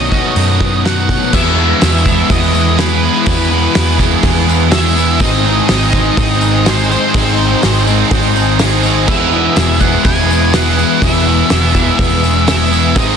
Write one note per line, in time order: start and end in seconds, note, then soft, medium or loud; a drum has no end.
0.00 0.17 B1 medium
0.00 1.32 B2 medium
0.00 1.32 D#3 medium
0.00 0.60 F#3 medium
0.00 1.32 A3 medium
0.00 1.33 B3 medium
0.00 0.11 C#4 medium
0.00 1.33 F#4 loud
0.00 1.32 B4 medium
0.00 0.82 D#5 medium
0.00 1.32 A5 medium
0.00 1.30 C#6 medium
0.00 1.32 D#6 medium
0.11 0.83 B2 medium
0.11 0.84 D#3 medium
0.11 0.84 A3 medium
0.11 0.84 B3 medium
0.11 1.34 C#4 medium
0.11 0.83 F#4 medium
0.11 kick medium
0.11 open hi-hat soft
0.36 1.14 F#2 medium
0.36 0.84 D#4 medium
0.36 open hi-hat medium
0.60 1.09 F#3 medium
0.60 kick medium
0.60 open hi-hat soft
0.85 1.32 B2 medium
0.85 1.32 D#3 medium
0.85 1.33 A3 medium
0.85 1.33 B3 medium
0.85 1.34 D#4 medium
0.85 1.34 F#4 loud
0.85 1.35 F#5 loud
0.85 snare loud
0.85 open hi-hat medium
1.09 1.34 F#3 medium
1.09 kick medium
1.09 open hi-hat soft
1.32 2.07 E2 medium
1.32 1.72 E2 medium
1.32 2.06 E3 medium
1.32 1.59 G#3 medium
1.32 1.58 B3 medium
1.32 5.17 E4 medium
1.32 1.58 E4 medium
1.32 1.57 G#4 loud
1.32 5.17 B4 medium
1.32 2.30 E5 loud
1.32 12.92 G#5 medium
1.32 5.17 D#6 medium
1.32 kick loud
1.32 crash loud
1.32 tambourine medium
1.57 1.80 G#3 medium
1.57 1.81 B3 medium
1.57 1.82 E4 medium
1.57 1.82 G#4 medium
1.57 tambourine soft
1.80 3.25 E2 loud
1.80 2.21 E2 loud
1.80 3.26 E3 medium
1.80 2.06 G#3 medium
1.80 2.06 B3 medium
1.80 2.05 E4 medium
1.80 2.04 G#4 medium
1.80 snare loud
1.80 open hi-hat medium
1.80 tambourine medium
2.05 2.55 E2 medium
2.05 2.55 E3 medium
2.05 2.29 G#3 medium
2.05 2.29 B3 medium
2.05 2.30 E4 medium
2.05 2.31 G#4 loud
2.05 kick medium
2.05 tambourine medium
2.30 3.08 E2 loud
2.30 2.55 G#3 medium
2.30 2.53 B3 medium
2.30 2.53 E4 medium
2.30 2.53 G#4 medium
2.30 2.81 D#5 loud
2.30 kick loud
2.30 open hi-hat medium
2.30 tambourine soft
2.53 2.78 G#3 medium
2.53 2.77 B3 medium
2.53 2.78 E4 medium
2.53 2.79 G#4 medium
2.53 tambourine medium
2.77 3.26 E2 medium
2.77 3.26 E3 loud
2.77 3.05 G#3 medium
2.77 3.03 B3 loud
2.77 3.02 E4 loud
2.77 3.02 G#4 loud
2.77 3.26 B4 medium
2.77 snare loud
2.77 open hi-hat medium
2.77 tambourine medium
3.02 3.28 G#3 medium
3.02 3.27 B3 medium
3.02 3.28 E4 medium
3.02 3.29 G#4 medium
3.26 3.66 E2 loud
3.26 3.76 E2 loud
3.26 3.76 E3 medium
3.26 3.53 G#3 medium
3.26 3.51 B3 loud
3.26 3.51 E4 medium
3.26 3.50 G#4 loud
3.26 3.96 B4 medium
3.26 kick loud
3.26 open hi-hat medium
3.26 tambourine medium
3.51 3.75 G#3 medium
3.51 3.75 B3 medium
3.51 3.75 E4 medium
3.51 3.77 G#4 medium
3.74 4.23 E2 medium
3.74 4.15 E2 loud
3.74 4.24 E3 loud
3.74 4.00 G#3 medium
3.74 3.99 B3 medium
3.74 3.99 E4 medium
3.74 3.99 G#4 medium
3.74 snare loud
3.74 open hi-hat medium
3.74 tambourine medium
3.99 4.49 E2 medium
3.99 4.49 E3 medium
3.99 4.22 G#3 medium
3.99 4.23 B3 medium
3.99 4.23 E4 medium
3.99 4.25 G#4 medium
3.99 kick medium
3.99 tambourine medium
4.23 5.22 E2 loud
4.23 4.49 G#3 medium
4.23 4.48 B3 medium
4.23 4.47 E4 medium
4.23 4.47 G#4 medium
4.23 kick loud
4.23 open hi-hat medium
4.23 tambourine soft
4.47 4.73 G#3 medium
4.47 4.72 B3 medium
4.47 4.72 E4 medium
4.47 4.74 G#4 medium
4.47 tambourine medium
4.71 5.19 E2 medium
4.71 5.19 E3 loud
4.71 4.98 G#3 medium
4.71 4.96 B3 loud
4.71 4.95 E4 loud
4.71 4.95 G#4 loud
4.71 5.21 E5 loud
4.71 snare loud
4.71 open hi-hat medium
4.71 tambourine loud
4.96 5.21 G#3 medium
4.96 5.20 B3 medium
4.96 5.20 E4 medium
4.96 5.22 G#4 medium
4.96 tambourine medium
5.20 5.59 G#1 loud
5.20 5.94 G#2 medium
5.20 5.70 D#3 medium
5.20 5.46 G#3 loud
5.20 5.45 C4 medium
5.20 5.45 D#4 loud
5.20 5.44 G#4 loud
5.20 9.05 C5 medium
5.20 9.04 D#5 medium
5.20 6.18 D#5 loud
5.20 13.17 D#6 medium
5.20 kick loud
5.20 open hi-hat medium
5.20 tambourine medium
5.44 5.68 G#3 medium
5.44 5.69 C4 medium
5.44 5.69 D#4 medium
5.44 5.71 G#4 medium
5.44 tambourine soft
5.68 6.08 G#1 loud
5.68 7.13 G#2 medium
5.68 6.18 D#3 loud
5.68 5.93 G#3 medium
5.68 5.93 C4 medium
5.68 5.92 D#4 medium
5.68 5.92 G#4 medium
5.68 snare loud
5.68 open hi-hat medium
5.68 tambourine medium
5.92 6.42 G#2 medium
5.92 6.42 D#3 medium
5.92 6.16 G#3 medium
5.92 6.16 C4 medium
5.92 6.18 D#4 medium
5.92 6.19 G#4 loud
5.92 kick medium
5.92 tambourine medium
6.16 6.95 G#1 medium
6.16 6.43 G#3 medium
6.16 6.41 C4 medium
6.16 6.42 D#4 medium
6.16 6.41 G#4 medium
6.16 6.68 D#5 loud
6.16 kick loud
6.16 open hi-hat medium
6.16 tambourine soft
6.41 6.66 G#3 medium
6.41 6.65 C4 medium
6.41 6.67 D#4 medium
6.41 6.67 G#4 medium
6.41 tambourine medium
6.65 7.12 G#2 medium
6.65 7.13 D#3 medium
6.65 6.91 G#3 loud
6.65 6.90 C4 loud
6.65 6.90 D#4 medium
6.65 6.89 G#4 loud
6.65 6.90 C5 medium
6.65 snare loud
6.65 open hi-hat medium
6.65 tambourine loud
6.89 7.14 G#3 medium
6.89 7.14 C4 medium
6.89 7.15 D#4 medium
6.89 7.16 G#4 medium
6.89 7.84 C5 medium
6.89 tambourine medium
7.14 7.53 G#1 loud
7.14 7.63 G#2 medium
7.14 7.63 D#3 medium
7.14 7.39 G#3 medium
7.14 7.38 C4 medium
7.14 7.38 D#4 loud
7.14 7.37 G#4 loud
7.14 kick loud
7.14 open hi-hat medium
7.14 tambourine medium
7.37 7.61 G#3 medium
7.37 7.61 C4 medium
7.37 7.63 D#4 medium
7.37 7.63 G#4 medium
7.37 tambourine soft
7.62 8.02 G#1 loud
7.62 8.11 G#2 medium
7.62 8.11 D#3 loud
7.62 7.87 G#3 medium
7.62 7.86 C4 medium
7.62 7.86 D#4 medium
7.62 7.85 G#4 medium
7.62 snare loud
7.62 open hi-hat medium
7.62 tambourine medium
7.86 8.36 G#2 medium
7.86 8.36 D#3 medium
7.86 8.10 G#3 medium
7.86 8.10 C4 medium
7.86 8.12 D#4 loud
7.86 8.13 G#4 medium
7.86 tambourine medium
8.10 9.08 G#1 loud
8.10 8.37 G#3 medium
8.10 8.35 C4 medium
8.10 8.35 D#4 medium
8.10 8.34 G#4 medium
8.10 kick loud
8.10 open hi-hat medium
8.10 tambourine soft
8.35 8.61 G#3 medium
8.35 8.60 C4 medium
8.35 8.61 D#4 medium
8.35 8.62 G#4 medium
8.35 tambourine medium
8.59 9.07 G#2 loud
8.59 9.07 D#3 loud
8.59 8.85 G#3 medium
8.59 8.84 C4 loud
8.59 8.84 D#4 loud
8.59 8.83 G#4 loud
8.59 snare loud
8.59 open hi-hat medium
8.59 tambourine loud
8.83 9.09 G#3 medium
8.83 9.08 C4 medium
8.83 9.10 D#4 medium
8.83 9.10 G#4 medium
8.83 tambourine medium
9.08 9.47 E1 loud
9.08 9.83 E2 medium
9.08 9.83 E3 medium
9.08 9.34 G#3 loud
9.08 9.33 B3 medium
9.08 9.32 E4 loud
9.08 9.32 G#4 loud
9.08 12.92 B4 medium
9.08 9.83 E5 loud
9.08 12.93 E5 medium
9.08 kick loud
9.08 tambourine medium
9.08 crash loud
9.32 9.56 G#3 medium
9.32 9.57 B3 medium
9.32 9.58 E4 medium
9.32 9.59 G#4 medium
9.32 tambourine soft
9.55 9.95 E1 loud
9.55 11.00 E2 loud
9.55 11.01 E3 medium
9.55 9.82 G#3 medium
9.55 9.82 B3 medium
9.55 9.81 E4 medium
9.55 9.80 G#4 loud
9.55 snare loud
9.55 open hi-hat medium
9.55 tambourine loud
9.80 10.31 E2 medium
9.80 10.31 E3 medium
9.80 10.04 G#3 medium
9.80 10.04 B3 medium
9.80 10.05 E4 loud
9.80 10.07 G#4 loud
9.80 10.05 F#5 loud
9.80 kick medium
9.80 tambourine medium
10.05 10.82 E1 medium
10.05 10.31 G#3 medium
10.05 10.30 B3 medium
10.05 10.29 E4 medium
10.05 10.29 G#4 medium
10.05 10.55 G#5 loud
10.05 kick loud
10.05 open hi-hat medium
10.05 tambourine soft
10.30 10.54 G#3 medium
10.30 10.54 B3 medium
10.30 10.54 E4 medium
10.30 10.55 G#4 medium
10.30 tambourine medium
10.53 11.00 E2 medium
10.53 11.00 E3 loud
10.53 10.79 G#3 loud
10.53 10.78 B3 medium
10.53 10.77 E4 medium
10.53 10.77 G#4 loud
10.53 11.04 F#5 loud
10.53 snare loud
10.53 open hi-hat medium
10.53 tambourine loud
10.77 11.01 G#3 medium
10.77 11.01 B3 medium
10.77 11.02 E4 medium
10.77 11.03 G#4 medium
10.77 tambourine medium
11.01 11.41 E1 medium
11.01 11.50 E2 loud
11.01 11.50 E3 medium
11.01 11.29 G#3 medium
11.01 11.27 B3 loud
11.01 11.26 E4 loud
11.01 11.26 G#4 medium
11.01 12.47 E5 loud
11.01 kick loud
11.01 open hi-hat medium
11.01 tambourine medium
11.27 11.50 G#3 medium
11.27 11.49 B3 medium
11.27 11.50 E4 medium
11.27 11.52 G#4 medium
11.27 tambourine soft
11.49 11.89 E1 loud
11.49 11.99 E2 loud
11.49 11.99 E3 loud
11.49 11.76 G#3 medium
11.49 11.75 B3 loud
11.49 11.74 E4 medium
11.49 11.74 G#4 medium
11.49 snare loud
11.49 open hi-hat medium
11.49 tambourine loud
11.75 12.25 E2 medium
11.75 12.25 E3 medium
11.75 11.98 G#3 medium
11.75 11.98 B3 medium
11.75 11.99 E4 loud
11.75 12.01 G#4 medium
11.75 kick medium
11.75 tambourine medium
11.99 12.96 E1 medium
11.99 12.24 G#3 medium
11.99 12.22 B3 medium
11.99 12.21 E4 medium
11.99 12.21 G#4 medium
11.99 kick loud
11.99 open hi-hat medium
11.99 tambourine soft
12.22 12.48 G#3 medium
12.22 12.48 B3 medium
12.22 12.48 E4 medium
12.22 12.49 G#4 medium
12.22 tambourine medium
12.47 12.94 E2 loud
12.47 12.95 E3 medium
12.47 12.73 G#3 loud
12.47 12.71 B3 loud
12.47 12.71 E4 loud
12.47 12.71 G#4 loud
12.47 12.97 E5 medium
12.47 snare loud
12.47 open hi-hat medium
12.47 tambourine loud
12.71 12.95 G#3 medium
12.71 12.95 B3 medium
12.71 12.95 E4 medium
12.71 12.96 G#4 medium
12.71 tambourine medium
12.94 13.17 G#1 loud
12.94 13.17 G#2 medium
12.94 13.17 D#3 loud
12.94 13.17 G#3 medium
12.94 13.17 C4 loud
12.94 13.17 D#4 loud
12.94 13.17 G#4 loud
12.94 13.17 C5 medium
12.94 13.17 D#5 medium
12.94 13.17 D#5 loud
12.94 13.17 G#5 medium
12.94 kick loud
12.94 open hi-hat medium
12.94 tambourine medium